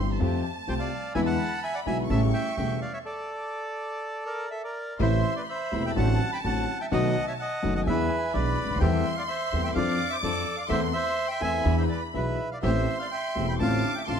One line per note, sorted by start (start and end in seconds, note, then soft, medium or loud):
0.00 0.17 G1 medium
0.00 0.17 G2 medium
0.00 0.17 E3 medium
0.00 0.17 G3 soft
0.00 0.17 C4 medium
0.00 0.17 C4 soft
0.00 0.17 E4 medium
0.00 0.17 G4 medium
0.00 0.20 C6 loud
0.20 0.40 F2 medium
0.20 0.40 F3 medium
0.20 0.40 A3 medium
0.20 0.40 C4 medium
0.20 0.40 F4 medium
0.20 0.41 G4 medium
0.20 1.15 A5 loud
0.67 0.88 C2 medium
0.67 0.88 C3 medium
0.67 0.87 F3 soft
0.67 0.88 A3 medium
0.67 0.88 A3 soft
0.67 0.88 C4 soft
0.67 0.88 F4 soft
0.67 0.88 G4 medium
0.67 0.88 G4 soft
0.67 0.74 C5 medium
0.67 0.74 G5 medium
0.80 1.13 D5 medium
0.80 1.13 F5 medium
1.15 1.35 E2 medium
1.15 1.35 E2 loud
1.15 1.35 D3 medium
1.15 1.35 E3 medium
1.15 1.35 G#3 medium
1.15 1.35 B3 medium
1.15 1.35 D4 medium
1.15 1.35 E4 medium
1.15 1.21 E5 medium
1.15 1.20 G#5 loud
1.15 2.06 B5 loud
1.26 1.60 F#5 medium
1.26 1.63 A5 loud
1.63 1.74 E5 medium
1.63 1.75 G#5 loud
1.74 1.80 D5 medium
1.74 1.80 F#5 loud
1.86 2.06 B1 medium
1.86 2.06 B2 medium
1.86 2.06 D3 medium
1.86 2.06 G#3 medium
1.86 2.06 G#3 soft
1.86 2.06 B3 soft
1.86 2.06 D4 soft
1.86 2.06 E4 medium
1.86 1.98 E5 medium
1.86 1.97 G#5 loud
2.10 2.30 A1 loud
2.10 2.30 A1 medium
2.10 2.30 A2 medium
2.10 2.30 C#3 medium
2.10 2.30 G3 medium
2.10 2.30 A3 medium
2.10 2.30 C#4 medium
2.10 2.30 E4 medium
2.10 2.30 G4 loud
2.10 2.21 E5 medium
2.10 2.21 A5 loud
2.10 3.05 C#6 loud
2.34 2.56 E5 medium
2.34 2.55 G5 loud
2.57 2.77 E1 medium
2.57 2.77 E2 medium
2.57 2.77 C#3 soft
2.57 2.77 G3 soft
2.57 2.77 A3 medium
2.57 2.77 A3 soft
2.57 2.77 C#4 medium
2.57 2.77 E4 medium
2.57 2.77 G4 medium
2.57 2.80 E5 medium
2.57 2.79 G5 medium
2.82 2.93 D5 medium
2.82 2.93 F5 medium
2.93 2.99 C#5 medium
2.93 2.99 E5 medium
3.06 4.46 A4 medium
3.06 4.24 D5 medium
4.26 4.49 A#4 medium
4.26 4.51 D5 medium
4.51 4.63 A4 medium
4.51 4.62 E5 medium
4.64 4.98 A#4 medium
4.64 4.98 D5 medium
4.99 5.20 A1 medium
4.99 5.20 A1 loud
4.99 5.20 A2 loud
4.99 5.20 C3 medium
4.99 5.20 E3 medium
4.99 5.20 A3 medium
4.99 5.20 C4 medium
4.99 5.20 E4 loud
4.99 5.20 E4 medium
4.99 5.35 C5 medium
4.99 5.34 E5 loud
4.99 5.44 C6 medium
5.36 5.43 B4 medium
5.36 5.42 D5 medium
5.47 5.85 E5 medium
5.47 5.95 B5 medium
5.51 5.83 C5 medium
5.71 5.92 E1 medium
5.71 5.93 E1 medium
5.71 5.92 E2 medium
5.71 5.92 C3 soft
5.71 5.92 E3 soft
5.71 5.92 A3 medium
5.71 5.92 A3 soft
5.71 5.92 C4 soft
5.71 5.92 E4 medium
5.86 5.92 E5 medium
5.86 5.91 G5 loud
5.95 6.16 A1 loud
5.95 6.17 A1 medium
5.95 6.16 A2 medium
5.95 6.16 D3 medium
5.95 6.16 F#3 medium
5.95 6.16 A3 medium
5.95 6.16 C4 medium
5.95 6.16 D4 medium
5.95 6.16 F#4 medium
5.95 6.31 F#5 medium
5.95 6.90 A5 loud
5.95 6.30 A5 loud
6.33 6.40 G5 medium
6.33 6.38 B5 loud
6.44 6.64 A1 medium
6.44 6.64 A2 medium
6.44 6.64 D3 soft
6.44 6.64 F#3 medium
6.44 6.64 A3 soft
6.44 6.64 C4 soft
6.44 6.64 C4 medium
6.44 6.64 D4 medium
6.44 6.64 F#4 medium
6.44 6.79 F#5 medium
6.44 6.78 A5 loud
6.81 6.87 E5 medium
6.81 6.86 G5 loud
6.91 7.12 B1 medium
6.91 7.12 B1 loud
6.91 7.12 B2 loud
6.91 7.11 D#3 medium
6.91 7.11 A3 medium
6.91 7.12 A3 medium
6.91 7.12 B3 medium
6.91 7.12 D#4 loud
6.91 7.12 F#4 medium
6.91 7.26 D#5 medium
6.91 7.25 F#5 loud
6.91 7.83 A5 medium
7.27 7.34 C#5 medium
7.27 7.33 E5 medium
7.40 7.74 D#5 medium
7.40 7.74 F#5 loud
7.63 7.83 F#1 medium
7.63 7.84 F#1 medium
7.63 7.83 F#2 medium
7.63 7.83 D#3 medium
7.63 7.83 A3 medium
7.63 7.83 B3 medium
7.63 7.83 B3 soft
7.63 7.83 D#4 medium
7.63 7.83 F#4 medium
7.75 7.82 D#5 medium
7.75 7.80 F#5 loud
7.86 8.07 E2 medium
7.86 8.07 E2 loud
7.86 8.07 E3 medium
7.86 8.07 G#3 medium
7.86 8.07 B3 medium
7.86 8.07 D4 medium
7.86 8.07 E4 loud
7.86 8.07 G#4 medium
7.86 8.32 B4 medium
7.86 8.36 E5 loud
7.86 8.34 G#5 medium
8.34 8.54 B1 medium
8.34 8.55 B1 medium
8.34 8.54 B2 medium
8.34 8.54 E3 soft
8.34 8.54 G#3 medium
8.34 8.54 B3 soft
8.34 8.54 D4 soft
8.34 8.54 D4 medium
8.34 8.55 E4 medium
8.34 8.54 G#4 medium
8.34 8.79 B4 medium
8.34 8.78 D5 medium
8.34 8.82 B5 loud
8.64 8.70 C#2 medium
8.70 8.76 D2 medium
8.76 8.82 D#2 medium
8.76 8.81 D#2 medium
8.80 9.02 E2 loud
8.80 9.02 E3 loud
8.80 9.01 G3 medium
8.80 9.01 A3 medium
8.80 9.01 C4 medium
8.80 9.02 C4 medium
8.80 9.02 E4 medium
8.80 9.02 G4 loud
8.80 9.02 A4 loud
8.80 9.15 E5 medium
8.80 9.14 G5 loud
8.80 9.76 C6 loud
9.17 9.24 D5 medium
9.17 9.22 F5 loud
9.28 9.62 C5 medium
9.28 9.61 E5 medium
9.52 9.72 E2 medium
9.52 9.73 E2 medium
9.52 9.73 E3 medium
9.52 9.72 G3 medium
9.52 9.72 A3 medium
9.52 9.72 C4 medium
9.52 9.72 C4 soft
9.52 9.72 E4 medium
9.52 9.72 G4 medium
9.52 9.73 A4 medium
9.63 9.71 E5 medium
9.63 9.69 G5 loud
9.75 9.96 F2 loud
9.75 9.96 F2 medium
9.75 9.96 F3 medium
9.75 9.96 C4 medium
9.75 9.96 D4 medium
9.75 9.96 F4 loud
9.75 9.96 A4 medium
9.75 10.10 D5 medium
9.75 10.08 F5 loud
9.75 10.70 D6 loud
10.10 10.17 C5 medium
10.10 10.16 E5 medium
10.22 10.43 F2 medium
10.22 10.43 F3 medium
10.22 10.43 C4 medium
10.22 10.43 C4 soft
10.22 10.43 D4 soft
10.22 10.43 F4 medium
10.22 10.43 A4 medium
10.22 10.57 A4 medium
10.22 10.55 D5 medium
10.57 10.65 D5 medium
10.57 10.63 F5 medium
10.68 10.90 E2 medium
10.68 10.90 E2 loud
10.68 10.90 E3 medium
10.68 10.89 A3 medium
10.68 10.90 A3 medium
10.68 10.89 C4 medium
10.68 10.90 C4 medium
10.68 10.90 E4 medium
10.68 10.90 A4 medium
10.68 10.82 C5 medium
10.68 10.80 E5 loud
10.68 11.66 C6 loud
10.93 11.28 C5 medium
10.93 11.27 E5 loud
11.28 11.42 E5 medium
11.28 11.41 G5 loud
11.40 11.62 E2 medium
11.40 11.62 E3 medium
11.40 11.62 A3 soft
11.40 11.62 A3 medium
11.40 11.62 C4 soft
11.40 11.62 C4 medium
11.40 11.62 E4 medium
11.40 11.62 A4 medium
11.40 11.75 E5 medium
11.40 11.75 G#5 loud
11.65 11.86 E2 medium
11.65 11.86 E3 medium
11.65 11.86 G#3 medium
11.65 11.86 B3 medium
11.65 11.86 D4 medium
11.65 11.86 E4 loud
11.65 11.86 G#4 medium
11.65 12.39 B5 medium
11.77 11.85 C5 medium
11.77 11.83 E5 medium
11.89 12.02 B4 medium
11.89 12.00 D5 medium
12.14 12.35 B1 medium
12.14 12.35 B2 medium
12.14 12.35 E3 soft
12.14 12.35 G#3 medium
12.14 12.35 B3 soft
12.14 12.35 D4 soft
12.14 12.35 E4 medium
12.14 12.35 G#4 medium
12.14 12.50 B4 medium
12.14 12.48 E5 medium
12.52 12.59 D5 medium
12.52 12.57 F5 medium
12.62 12.83 A1 medium
12.62 12.84 A1 loud
12.62 12.83 A2 medium
12.62 12.83 E3 medium
12.62 12.83 A3 medium
12.62 12.83 C4 medium
12.62 12.83 G4 medium
12.62 12.84 G4 medium
12.62 12.98 C5 medium
12.62 12.97 E5 loud
12.62 13.56 C6 loud
12.99 13.07 D5 medium
12.99 13.05 F5 medium
13.11 13.47 E5 medium
13.11 13.49 G5 medium
13.35 13.56 E1 medium
13.35 13.56 E2 medium
13.35 13.56 E3 medium
13.35 13.56 A3 soft
13.35 13.56 C4 soft
13.35 13.56 G4 medium
13.48 13.55 G5 medium
13.48 13.53 B5 medium
13.60 13.80 A1 medium
13.60 13.80 A2 medium
13.60 13.80 D3 medium
13.60 13.80 A3 medium
13.60 13.80 C4 medium
13.60 13.80 D4 medium
13.60 13.80 F4 medium
13.60 13.95 F5 medium
13.60 13.93 A5 loud
13.60 14.08 D6 loud
13.95 14.03 E5 medium
13.95 14.01 G5 medium
14.07 14.20 A1 medium
14.07 14.20 A2 medium
14.07 14.20 D3 soft
14.07 14.20 A3 soft
14.07 14.20 C4 soft
14.07 14.20 D4 medium
14.07 14.20 F4 soft
14.07 14.20 F4 medium
14.07 14.20 F5 medium
14.07 14.20 A5 loud
14.07 14.20 C6 loud